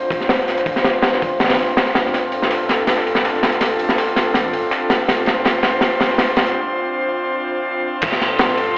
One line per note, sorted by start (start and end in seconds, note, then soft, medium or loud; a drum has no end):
0.00 7.99 C4 medium
0.00 7.99 D4 medium
0.00 7.99 F4 medium
0.00 2.13 C5 medium
0.00 closed hi-hat soft
0.10 0.28 D1 loud
0.10 kick loud
0.10 snare soft
0.10 open hi-hat medium
0.10 shaker medium
0.20 snare soft
0.20 closed hi-hat soft
0.29 1.02 D1 medium
0.29 snare loud
0.29 open hi-hat medium
0.29 shaker medium
0.39 snare medium
0.48 snare soft
0.48 open hi-hat medium
0.48 shaker medium
0.57 snare medium
0.57 closed hi-hat soft
0.66 kick medium
0.66 open hi-hat medium
0.66 shaker medium
0.76 snare medium
0.84 snare loud
0.84 open hi-hat medium
0.84 shaker medium
1.02 snare loud
1.02 open hi-hat medium
1.04 open hi-hat medium
1.13 snare soft
1.22 kick medium
1.22 open hi-hat medium
1.22 shaker medium
1.40 1.60 A1 medium
1.40 snare medium
1.40 open hi-hat medium
1.40 shaker medium
1.44 snare medium
1.44 open hi-hat medium
1.49 snare medium
1.49 open hi-hat medium
1.53 snare medium
1.53 open hi-hat medium
1.58 1.67 G1 medium
1.58 snare soft
1.58 open hi-hat medium
1.58 shaker medium
1.77 snare loud
1.77 open hi-hat medium
1.77 shaker medium
1.86 snare soft
1.95 2.12 G1 medium
1.95 snare loud
1.95 open hi-hat medium
1.95 shaker medium
2.05 snare soft
2.05 closed hi-hat soft
2.14 2.86 D1 loud
2.14 5.07 A4 medium
2.14 snare soft
2.14 open hi-hat medium
2.14 shaker medium
2.32 open hi-hat medium
2.32 shaker medium
2.42 snare soft
2.51 snare loud
2.51 open hi-hat medium
2.51 shaker medium
2.69 snare soft
2.69 snare loud
2.69 open hi-hat medium
2.87 snare soft
2.87 open hi-hat medium
2.87 shaker medium
2.97 snare loud
2.97 open hi-hat medium
3.06 3.22 D1 loud
3.06 open hi-hat medium
3.15 snare medium
3.15 shaker medium
3.24 3.96 D1 medium
3.24 snare loud
3.24 open hi-hat medium
3.24 shaker medium
3.35 snare medium
3.43 snare medium
3.43 open hi-hat medium
3.43 shaker medium
3.52 snare medium
3.52 closed hi-hat soft
3.61 snare medium
3.61 open hi-hat medium
3.61 shaker medium
3.79 open hi-hat medium
3.79 shaker medium
3.89 snare medium
3.98 snare loud
3.98 open hi-hat medium
4.16 snare medium
4.16 open hi-hat medium
4.16 shaker medium
4.34 4.54 A1 medium
4.34 snare medium
4.34 open hi-hat medium
4.34 shaker medium
4.53 4.61 G1 loud
4.53 open hi-hat medium
4.53 shaker medium
4.71 snare loud
4.71 open hi-hat medium
4.71 shaker medium
4.89 snare medium
4.89 open hi-hat medium
4.89 shaker medium
4.99 closed hi-hat soft
5.08 5.80 D1 loud
5.08 8.02 C5 medium
5.08 snare medium
5.08 open hi-hat medium
5.08 shaker medium
5.26 snare medium
5.26 open hi-hat medium
5.26 shaker medium
5.45 snare loud
5.45 snare medium
5.45 open hi-hat medium
5.45 shaker medium
5.63 snare medium
5.63 open hi-hat medium
5.63 shaker medium
5.81 snare medium
5.81 open hi-hat medium
5.81 shaker medium
5.92 closed hi-hat soft
6.00 6.17 D1 loud
6.00 snare loud
6.00 snare medium
6.00 open hi-hat medium
6.00 shaker medium
6.09 snare loud
6.09 shaker medium
6.18 6.55 D1 medium
6.18 snare medium
6.18 snare loud
6.18 open hi-hat medium
6.18 shaker medium
6.29 snare medium
6.36 snare loud
6.36 snare medium
6.36 open hi-hat medium
6.36 shaker medium
6.46 snare loud
6.46 closed hi-hat soft
6.46 shaker medium
8.02 8.75 D1 loud
8.02 8.78 C4 medium
8.02 8.78 D4 medium
8.02 8.78 F4 medium
8.02 8.78 A4 medium
8.02 8.78 C6 medium
8.02 kick loud
8.02 open hi-hat medium
8.02 crash medium
8.12 snare medium
8.21 snare soft
8.21 open hi-hat medium
8.39 snare loud
8.39 open hi-hat medium
8.49 snare soft
8.57 open hi-hat medium